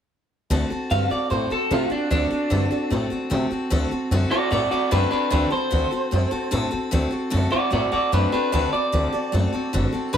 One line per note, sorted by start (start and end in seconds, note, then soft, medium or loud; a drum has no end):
0.50 0.66 D2 medium
0.50 0.70 D3 medium
0.50 0.71 A3 medium
0.50 0.71 C4 loud
0.50 0.70 F#4 loud
0.50 0.69 A4 loud
0.70 0.90 C4 soft
0.70 0.90 F#4 soft
0.70 0.90 A4 medium
0.70 muted upright bass stroke medium
0.90 1.06 G2 medium
0.90 1.11 D3 medium
0.90 1.11 A3 medium
0.90 1.11 C4 medium
0.90 1.10 F#4 medium
0.90 1.09 A4 medium
0.90 1.10 F5 medium
1.10 1.30 C4 soft
1.10 1.31 F#4 medium
1.10 1.30 A4 medium
1.10 1.30 D5 medium
1.10 muted upright bass stroke medium
1.30 1.47 A2 medium
1.30 1.51 A3 medium
1.30 1.51 C4 medium
1.30 1.50 F#4 medium
1.30 1.49 A4 medium
1.30 1.50 C5 medium
1.50 1.70 C4 soft
1.50 1.70 F#4 medium
1.50 1.71 A4 medium
1.50 muted upright bass stroke medium
1.71 1.87 C3 medium
1.71 1.91 D3 medium
1.71 1.91 A3 medium
1.71 1.91 C4 medium
1.71 1.91 F4 medium
1.71 1.90 F#4 medium
1.71 1.89 A4 medium
1.90 2.10 C4 soft
1.90 2.10 D4 medium
1.90 2.11 F#4 soft
1.90 2.11 A4 medium
1.90 muted upright bass stroke medium
2.10 2.27 D2 medium
2.10 2.31 D3 medium
2.10 2.31 A3 medium
2.10 2.31 C4 medium
2.10 2.89 D4 loud
2.10 2.31 F#4 medium
2.10 2.29 A4 medium
2.30 2.50 C4 soft
2.30 2.50 F#4 soft
2.30 2.50 A4 medium
2.30 muted upright bass stroke medium
2.50 2.67 G2 medium
2.50 2.71 D3 medium
2.50 2.71 A3 medium
2.50 2.71 C4 medium
2.50 2.71 F#4 medium
2.50 2.69 A4 medium
2.71 2.90 C4 soft
2.71 2.91 F#4 medium
2.71 2.91 A4 medium
2.71 muted upright bass stroke medium
2.90 3.07 A2 medium
2.90 3.11 A3 medium
2.90 3.11 C4 medium
2.90 3.10 F#4 medium
2.90 3.09 A4 medium
3.10 3.30 C4 medium
3.10 3.30 F#4 medium
3.10 3.30 A4 medium
3.10 muted upright bass stroke medium
3.30 3.47 C3 medium
3.30 3.51 D3 medium
3.30 3.51 A3 medium
3.30 3.51 C4 medium
3.30 3.50 F#4 medium
3.30 3.49 A4 medium
3.51 3.70 C4 soft
3.51 3.71 F#4 medium
3.51 3.71 A4 medium
3.51 muted upright bass stroke medium
3.70 3.85 D2 medium
3.70 3.91 D3 medium
3.70 3.91 A3 loud
3.70 3.91 C4 loud
3.70 3.91 F#4 loud
3.70 3.90 A4 loud
3.91 4.11 C4 soft
3.91 4.11 F#4 medium
3.91 4.11 A4 medium
3.91 muted upright bass stroke medium
4.11 4.25 F#2 medium
4.11 4.32 D3 medium
4.11 4.32 A3 medium
4.11 4.32 C4 medium
4.11 4.31 F#4 loud
4.11 4.30 A4 medium
4.31 4.50 C4 soft
4.31 4.50 F#4 medium
4.31 4.51 F#4 soft
4.31 4.51 A4 medium
4.31 4.50 D5 medium
4.31 muted upright bass stroke medium
4.51 4.65 A2 medium
4.51 4.71 A3 medium
4.51 4.72 C4 medium
4.51 4.70 F#4 medium
4.51 4.71 F#4 medium
4.51 4.70 A4 medium
4.51 4.70 D5 medium
4.71 4.90 C4 soft
4.71 4.90 F#4 medium
4.71 4.91 F#4 medium
4.71 4.91 A4 medium
4.71 4.91 D5 medium
4.71 muted upright bass stroke medium
4.91 5.05 F#2 medium
4.91 5.12 D3 medium
4.91 5.12 A3 medium
4.91 5.12 C4 medium
4.91 5.10 D4 medium
4.91 5.11 F#4 medium
4.91 5.09 A4 medium
4.91 5.11 B4 medium
5.11 5.31 C4 soft
5.11 5.30 D4 medium
5.11 5.31 F#4 soft
5.11 5.31 A4 medium
5.11 5.31 B4 medium
5.11 muted upright bass stroke medium
5.30 5.46 D2 medium
5.30 5.51 D3 medium
5.30 5.52 A3 medium
5.30 5.52 C4 loud
5.30 5.50 D4 medium
5.30 5.50 F#4 medium
5.30 5.49 A4 medium
5.30 5.51 B4 medium
5.50 5.70 C4 soft
5.50 5.71 F#4 soft
5.50 5.71 A4 medium
5.50 6.69 C5 medium
5.50 muted upright bass stroke medium
5.71 5.86 D2 medium
5.71 5.91 D3 medium
5.71 5.92 A3 medium
5.71 5.92 C4 medium
5.71 5.91 F#4 medium
5.71 5.90 A4 medium
5.91 6.11 C4 soft
5.91 6.12 F#4 medium
5.91 6.12 A4 medium
5.91 muted upright bass stroke medium
6.11 6.26 F#2 medium
6.11 6.32 A3 medium
6.11 6.32 C4 medium
6.11 6.31 F#4 medium
6.11 6.30 A4 medium
6.31 6.51 C4 medium
6.31 6.51 F#4 medium
6.31 6.51 A4 medium
6.31 muted upright bass stroke medium
6.51 6.66 A2 medium
6.51 6.72 D3 medium
6.51 6.72 A3 medium
6.51 6.72 C4 medium
6.51 6.71 F#4 medium
6.51 6.70 A4 loud
6.71 6.91 C4 medium
6.71 6.91 F#4 medium
6.71 6.92 A4 medium
6.71 muted upright bass stroke medium
6.91 7.06 D2 medium
6.91 7.12 D3 medium
6.91 7.12 A3 loud
6.91 7.12 C4 loud
6.91 7.11 F#4 loud
6.91 7.09 A4 loud
7.11 7.30 C4 soft
7.11 7.31 F#4 medium
7.11 7.31 A4 medium
7.11 muted upright bass stroke medium
7.30 7.47 F#2 loud
7.30 7.52 D3 medium
7.30 7.52 A3 loud
7.30 7.51 C4 loud
7.30 7.51 F#4 loud
7.30 7.49 A4 loud
7.50 7.70 C4 medium
7.50 7.71 F#4 medium
7.50 7.71 F#4 soft
7.50 7.72 A4 medium
7.50 7.72 D5 medium
7.50 muted upright bass stroke medium
7.71 7.86 A2 medium
7.71 7.92 A3 medium
7.71 7.92 C4 medium
7.71 7.91 F#4 medium
7.71 7.90 A4 medium
7.71 7.92 D5 medium
7.92 8.12 C4 soft
7.92 8.11 F#4 medium
7.92 8.12 F#4 medium
7.92 8.12 A4 medium
7.92 8.12 D5 medium
7.92 muted upright bass stroke medium
8.12 8.26 F#2 medium
8.12 8.33 D3 medium
8.12 8.33 A3 medium
8.12 8.33 C4 medium
8.12 8.31 D4 medium
8.12 8.32 F#4 medium
8.12 8.31 A4 medium
8.12 8.32 B4 medium
8.32 8.52 C4 soft
8.32 8.51 D4 medium
8.32 8.52 F#4 medium
8.32 8.53 A4 medium
8.32 8.51 B4 medium
8.32 muted upright bass stroke medium
8.52 8.67 D2 medium
8.52 8.73 D3 medium
8.52 8.73 A3 medium
8.52 8.73 C4 medium
8.52 8.71 D4 medium
8.52 8.73 F#4 medium
8.52 8.71 A4 medium
8.52 8.72 B4 medium
8.73 8.92 C4 soft
8.73 8.92 F#4 soft
8.73 8.93 A4 medium
8.73 9.90 D5 loud
8.73 muted upright bass stroke medium
8.92 9.07 D2 loud
8.92 9.13 D3 medium
8.92 9.13 A3 medium
8.92 9.13 C4 medium
8.92 9.12 F#4 medium
8.92 9.11 A4 medium
9.12 9.32 C4 soft
9.12 9.33 F#4 soft
9.12 9.33 A4 medium
9.12 muted upright bass stroke medium
9.32 9.47 F#2 medium
9.32 9.53 A3 medium
9.32 9.53 C4 medium
9.32 9.52 F#4 medium
9.32 9.51 A4 medium
9.53 9.73 C4 medium
9.53 9.73 F#4 medium
9.53 9.73 A4 medium
9.53 muted upright bass stroke medium
9.73 9.87 F#1 medium
9.73 9.93 D3 medium
9.73 9.94 A3 medium
9.73 9.94 C4 loud
9.73 9.93 F#4 loud
9.73 9.91 A4 medium
9.92 10.13 C4 soft
9.92 10.14 F#4 medium
9.92 10.13 A4 medium
9.92 muted upright bass stroke medium
10.13 10.17 G1 loud
10.13 10.17 G3 medium
10.13 10.17 D4 medium
10.13 10.17 F4 medium
10.13 10.17 B4 loud